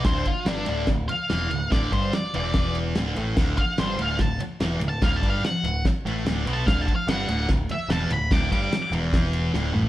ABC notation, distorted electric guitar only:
X:1
M:4/4
L:1/8
Q:1/4=146
K:Clyd
V:1 name="Distorted electric guitar" clef=bass
[D,,D,] z [G,,G,] [D,,D,] D,, z [E,,E,] D,, | [D,,D,] [G,,G,] z [E,,E,]3 [D,,D,] [A,,A,] | [D,,D,] z [G,,G,] [D,,D,] D,, z [E,,E,] D,, | [D,,D,] [G,,G,] z D,, z [A,,A,] [D,,D,] [B,,B,] |
[D,,D,] z [G,,G,] [D,,D,] D,, z [E,,E,] D,, | [D,,D,] [G,,G,] z [E,,E,]3 [D,,D,] [A,,A,] |]